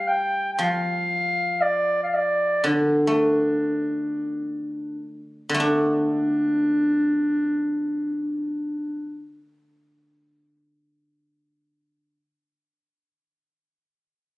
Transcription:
Already playing: guzheng G3
0.08 clarinet G5
0.53 clarinet G5
0.59 guzheng F3
0.63 clarinet F5
1.61 clarinet D5
2.03 clarinet F5
2.14 clarinet D5
2.64 guzheng D3, clarinet D4
3.07 guzheng A3
5.49 guzheng D3
5.54 guzheng A3
5.60 guzheng D4, clarinet D4

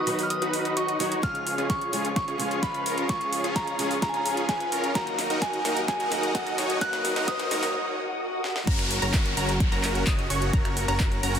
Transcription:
Already playing: string section F#4 B4 D#5 B5, synth bell D#6
0.06 analog synth bass B1, steel-string acoustic guitar D#3 F#3 B3 F#4, supersaw synth D#4 F#4 B4, open hi-hat
0.19 open hi-hat
0.23 synth bell F6
0.30 synth bell D#6, closed hi-hat
0.42 analog synth bass B1, supersaw synth D#4 F#4 B4, closed hi-hat
0.53 open hi-hat
0.65 closed hi-hat
0.77 analog synth bass B1, supersaw synth D#4 F#4 D#5, synth bell C#6, closed hi-hat
0.88 closed hi-hat
0.99 analog synth bass B1, steel-string acoustic guitar D#3 F#3 B3 F#4, supersaw synth D#4 F#4 C#5, open hi-hat
1.12 closed hi-hat
1.22 analog synth bass C#2, steel-string acoustic guitar C#3 F3 G#3 F4, supersaw synth C#4 F4 G#4, string section G#4 C#5 F5 C#6, synth bell F6, kick, snare, closed hi-hat, riser
1.35 closed hi-hat
1.47 open hi-hat
1.58 analog synth bass C#2, supersaw synth C#4 F4 G#4, closed hi-hat
1.70 synth bell C#6, kick, snare, closed hi-hat
1.81 closed hi-hat
1.92 analog synth bass C#2, steel-string acoustic guitar C#3 F3 G#3 F4, supersaw synth C#4 F4 G#4, open hi-hat
2.05 closed hi-hat
2.16 synth bell C#6, kick, snare, closed hi-hat
2.28 analog synth bass C#2, supersaw synth C#4 F4 G#4, closed hi-hat
2.38 steel-string acoustic guitar C#3 F3 G#3 F4, open hi-hat
2.51 closed hi-hat
2.63 analog synth bass C#2, synth bell B5, kick, snare, closed hi-hat
2.74 closed hi-hat
2.86 analog synth bass C#2, supersaw synth C#4 F4 A#4, open hi-hat
2.98 closed hi-hat
3.08 analog synth bass C#2, steel-string acoustic guitar C#3 F3 G#3 F4, supersaw synth C#4, synth bell C#6, kick, snare, closed hi-hat
3.21 closed hi-hat
3.33 open hi-hat
3.44 analog synth bass C#2, supersaw synth C#4 F4 G#4, closed hi-hat
3.56 synth bell A#5, kick, snare, closed hi-hat
3.67 closed hi-hat
3.78 analog synth bass C#2, steel-string acoustic guitar C#3 F3 G#3 F4, supersaw synth C#4 F4 G#4, open hi-hat
3.91 open hi-hat
4.02 synth bell A#5, kick, snare, closed hi-hat
4.09 synth bell G#5
4.14 analog synth bass C#2, supersaw synth C#4 F4 G#4, synth bell A#5, closed hi-hat
4.26 open hi-hat
4.37 closed hi-hat
4.49 analog synth bass C#2, supersaw synth B4, synth bell G#5, kick, snare, closed hi-hat
4.60 closed hi-hat
4.72 analog synth bass C#2, supersaw synth C#4 F4 A#4, open hi-hat
4.84 closed hi-hat
4.94 analog synth bass D#2, steel-string acoustic guitar D#3 F#3 A#3 F#4, string section A#4 D#5 F#5 D#6, synth bell A#5, kick, snare, closed hi-hat
5.07 closed hi-hat
5.19 snare, open hi-hat
5.30 analog synth bass D#2, supersaw synth D#4 F#4 A#4, closed hi-hat
5.42 synth bell G#5, kick, snare, closed hi-hat
5.53 closed hi-hat
5.64 analog synth bass D#2, steel-string acoustic guitar D#3 F#3 A#3 F#4, supersaw synth D#4 F#4 A#4, snare, open hi-hat
5.77 closed hi-hat
5.88 synth bell G#5, kick, snare, closed hi-hat
6.00 analog synth bass D#2, supersaw synth D#4 F#4 A#4, closed hi-hat
6.10 steel-string acoustic guitar D#3 F#3 A#3 F#4, snare, open hi-hat
6.23 closed hi-hat
6.35 analog synth bass D#2, supersaw synth D#4 F#4 D#5, synth bell F#5, kick, snare, closed hi-hat
6.47 closed hi-hat
6.58 analog synth bass D#2, supersaw synth D#4 F#4 C#5, snare, open hi-hat
6.70 closed hi-hat
6.80 analog synth bass D#2, steel-string acoustic guitar D#3 F#3 A#3 F#4, supersaw synth D#4 F#4 A#4, synth bell F#6, kick, snare, closed hi-hat
6.93 snare, closed hi-hat
7.05 snare, open hi-hat
7.16 analog synth bass D#2, supersaw synth D#4 F#4 A#4, snare, closed hi-hat
7.28 synth bell D#6, kick, snare, closed hi-hat
7.39 snare, closed hi-hat
7.50 analog synth bass D#2, steel-string acoustic guitar D#3 F#3 A#3 F#4, supersaw synth D#4 F#4 A#4, snare, open hi-hat
7.63 snare, open hi-hat
7.74 swell
8.44 snare
8.56 snare
8.67 analog synth bass F#1, string section C#3 F#3 A#3 F#4 A#4, supersaw synth C#4 F#4 A#4, synth pluck A#5, kick, closed hi-hat, crash, downlifter
8.79 finger snap, closed hi-hat
8.91 open hi-hat
9.02 analog synth bass F#1, supersaw synth C#4 F#4 A#4, synth pluck A#5, closed hi-hat
9.14 kick, clap, closed hi-hat
9.26 closed hi-hat
9.37 analog synth bass F#1, supersaw synth C#4 F#4 A#4, synth pluck A#5, open hi-hat
9.49 closed hi-hat
9.60 kick, closed hi-hat
9.72 analog synth bass F#1, supersaw synth C#4 F#4 A#4, synth pluck A#5, closed hi-hat
9.84 clap, open hi-hat
9.95 closed hi-hat
10.07 analog synth bass F#1, supersaw synth D#5, synth pluck D#6, kick, clap, closed hi-hat
10.19 closed hi-hat
10.30 analog synth bass F#1, supersaw synth C#4 F#4 C#5, synth pluck C#6, open hi-hat
10.42 closed hi-hat
10.53 analog synth bass F#1, supersaw synth C#4 F#4 A#4, synth pluck A#5, kick, closed hi-hat
10.65 finger snap, closed hi-hat
10.77 open hi-hat
10.88 analog synth bass F#1, supersaw synth C#4 F#4 A#4, synth pluck A#5, closed hi-hat
11.00 kick, clap, closed hi-hat
11.12 closed hi-hat
11.23 analog synth bass F#1, supersaw synth C#4 F#4 A#4, synth pluck A#5, open hi-hat
11.35 open hi-hat

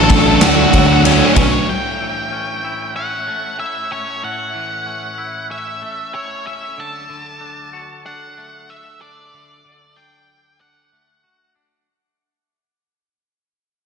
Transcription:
Already playing: fingered electric bass A1, felt piano A4, string section A4 F#5 C#6 E6
0.04 lead electric guitar A4
0.09 distorted electric guitar D3 F#3 A3 D4, lead electric guitar A4, kick, ride
0.19 lead electric guitar A4
0.27 lead electric guitar A4
0.36 lead electric guitar A4
0.41 fingered electric bass D2, distorted electric guitar D3 F#3 A3 D4, lead electric guitar F#4, felt piano D5, snare, ride
0.48 lead electric guitar F#4
0.56 lead electric guitar F#4
0.63 lead electric guitar F#4
0.71 fingered electric bass D2, distorted electric guitar D3 F#3 A3, lead electric guitar F#4, felt piano C#5, kick, ride
0.75 distorted electric guitar D4, lead electric guitar F#4
0.87 lead electric guitar F#4
0.93 lead electric guitar F#4
1.04 distorted electric guitar D3 F#3 A3 D4, lead electric guitar C#4, ride
1.12 lead electric guitar C#4
1.19 lead electric guitar C#4
1.26 lead electric guitar C#4
1.35 fingered electric bass B1, distorted electric guitar D3 F#3 A3 D4, lead electric guitar C#4 C#5, felt piano B4, kick, ride
1.42 lead electric guitar C#4
1.67 string section A2 A3 C#5 E5, clean electric guitar A2, lead electric guitar G5
2.00 clean electric guitar E3
2.32 clean electric guitar C#4
2.64 clean electric guitar E4
2.96 clean electric guitar C#4, lead electric guitar F#5
3.27 clean electric guitar A3
3.59 clean electric guitar E4, lead electric guitar E5
3.91 clean electric guitar C#4, lead electric guitar C#5
4.23 clean electric guitar A2, lead electric guitar F#5
4.55 clean electric guitar E3
4.86 clean electric guitar C#4
5.18 clean electric guitar E4
5.50 clean electric guitar C#4, lead electric guitar E5
5.82 clean electric guitar A3
6.14 clean electric guitar E4, lead electric guitar C#5
6.46 clean electric guitar C#4, lead electric guitar E5
6.77 string section D2 D3 F#3 A4, clean electric guitar D3, lead electric guitar A5
7.09 clean electric guitar D3
7.41 clean electric guitar D4
7.73 clean electric guitar F#4
8.05 clean electric guitar D4, lead electric guitar F#5
8.38 clean electric guitar A3
8.70 lead electric guitar E5
9.01 clean electric guitar D4, lead electric guitar D5
9.33 clean electric guitar D3
9.65 clean electric guitar D3
9.97 clean electric guitar D4, lead electric guitar G5
10.60 clean electric guitar D4, lead electric guitar F#5
10.92 clean electric guitar A3
11.24 clean electric guitar F#4
11.55 clean electric guitar D4

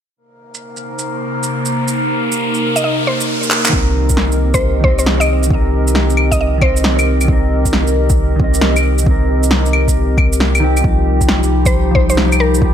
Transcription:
0.16 ambient pad C3 A#3 D#4 C5, synth texture A#3 A#4, riser
0.55 shaker
0.77 shaker
0.99 shaker
1.43 shaker
1.66 shaker
1.88 shaker
1.95 ambient pad A#4
2.32 shaker
2.54 shaker
2.76 synth pluck D#5, shaker
2.84 synth pluck D#5
3.07 synth pluck C5
3.21 shaker
3.43 shaker
3.51 clap
3.65 clean electric guitar D#3, clap, shaker
3.72 sub bass C2, ambient pad C4 G4 A#4 D#5, clean electric guitar C4, kick
3.77 clean electric guitar A#4
4.09 kick, shaker
4.17 snare
4.32 shaker
4.54 synth pluck C5, kick, shaker
4.80 clean electric guitar D#3 C4, synth pluck C5, kick
4.88 clean electric guitar D#5
4.99 synth pluck C5, shaker
5.06 snare
5.20 synth pluck D#5, claves, shaker
5.43 clean electric guitar D#3, shaker
5.50 clean electric guitar C4, kick
5.55 clean electric guitar A#4
5.88 shaker
5.95 snare
6.10 shaker
6.17 claves
6.32 synth pluck D#5, kick, shaker
6.41 synth pluck D#5
6.58 clean electric guitar D#3 C4, kick, claves
6.62 synth pluck C5, clean electric guitar D#5
6.77 shaker
6.84 snare
6.99 claves, shaker
7.21 clean electric guitar D#3, claves, shaker
7.28 clean electric guitar C4, kick
7.33 clean electric guitar A#4
7.65 kick, shaker
7.73 snare
7.87 shaker
8.10 kick, shaker
8.36 clean electric guitar D#3, kick
8.40 clean electric guitar C4
8.44 clean electric guitar D#5
8.54 shaker
8.61 snare
8.76 claves, shaker
8.98 shaker
9.03 clean electric guitar D#3 C4, kick
9.11 clean electric guitar A#4
9.43 shaker
9.51 snare
9.66 shaker
9.73 claves
9.88 kick, shaker
10.18 kick, claves
10.33 shaker
10.40 snare
10.55 claves, shaker
10.60 clean electric guitar D#3 C4
10.64 clean electric guitar G4
10.77 clean electric guitar F3, claves, shaker
10.84 sub bass C2, synth texture G3 G4, ambient pad D#4 F4, clean electric guitar D#4, kick
10.89 clean electric guitar G4
11.21 kick, shaker
11.29 snare
11.43 shaker
11.66 synth pluck C5, kick, shaker
11.91 clean electric guitar F3, synth pluck C5
11.95 clean electric guitar D#4 C5, kick
12.10 synth pluck C5, shaker
12.17 snare
12.32 claves, shaker
12.40 synth pluck A#4
12.54 clean electric guitar F3, shaker
12.61 clean electric guitar D#4 G4, kick

